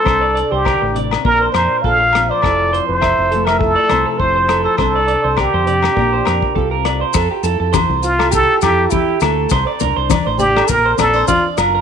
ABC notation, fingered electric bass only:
X:1
M:4/4
L:1/16
Q:"Swing 16ths" 1/4=102
K:F
V:1 name="Fingered electric bass" clef=bass
C,,3 C,,2 A,,,3 B,,,2 F,, z B,,,4 | F,,,3 F,,,2 F,,,4- F,,, C,, z F,,,4 | C,,3 C,,2 F,,3 B,,,2 F,, z C,,4 | F,, z F,, F,,2 C,,4- C,, F,,2 z2 D,,2 |
C,, z C,, C,,2 A,,,3 B,,,2 B,,,2 z2 _G,,,2 |]